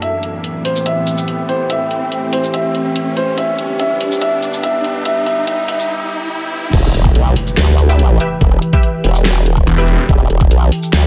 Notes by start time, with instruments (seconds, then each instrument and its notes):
Already playing: riser
0.02 ambient pad A2 E3 C4 G4, grand piano E5, closed hi-hat
0.23 closed hi-hat
0.44 closed hi-hat
0.65 grand piano C5, open hi-hat
0.76 shaker
0.86 grand piano E5, closed hi-hat
1.07 closed hi-hat, shaker
1.18 shaker
1.28 closed hi-hat
1.49 grand piano C5, closed hi-hat
1.70 grand piano E5, closed hi-hat
1.91 closed hi-hat
2.12 closed hi-hat
2.33 grand piano C5, open hi-hat
2.44 shaker
2.54 grand piano E5, closed hi-hat
2.75 closed hi-hat
2.96 closed hi-hat
3.17 grand piano C5, closed hi-hat
3.38 ambient pad G2 D3 B3, grand piano E5, closed hi-hat
3.59 closed hi-hat
3.80 grand piano E5, closed hi-hat
4.01 open hi-hat
4.12 shaker
4.21 grand piano E5, closed hi-hat
4.43 closed hi-hat, shaker
4.53 shaker
4.63 grand piano E5, closed hi-hat
4.84 closed hi-hat
5.05 grand piano E5, closed hi-hat
5.26 grand piano E5, closed hi-hat
5.47 grand piano E5, closed hi-hat
5.68 grand piano E5, open hi-hat
5.79 shaker
6.73 wobble bass E1, ambient pad E3 E4 G4 B4, kick, closed hi-hat, crash, impact
6.94 wobble bass E1, closed hi-hat
7.05 kick
7.15 wobble bass B1, closed hi-hat
7.36 open hi-hat
7.47 shaker
7.57 wobble bass D2, snare, clap, closed hi-hat
7.78 closed hi-hat, shaker
7.89 synth stab G4 B4 E5, shaker
7.99 closed hi-hat
8.20 synth stab G4 B4 E5, closed hi-hat
8.41 wobble bass E1, kick, closed hi-hat
8.62 closed hi-hat
8.73 synth stab G4 B4 E5, kick
8.83 closed hi-hat
9.04 wobble bass E1, open hi-hat
9.15 shaker
9.25 snare, clap, closed hi-hat
9.46 wobble bass D#1, closed hi-hat
9.57 kick
9.67 detuned saw bass E1, closed hi-hat
9.78 synth stab G4 B4 E5
9.88 closed hi-hat
10.09 wobble bass E1, ambient pad A4, kick, closed hi-hat
10.30 wobble bass E1, closed hi-hat
10.41 kick
10.51 wobble bass B1, closed hi-hat
10.72 open hi-hat
10.83 shaker
10.93 wobble bass D2, snare, clap, closed hi-hat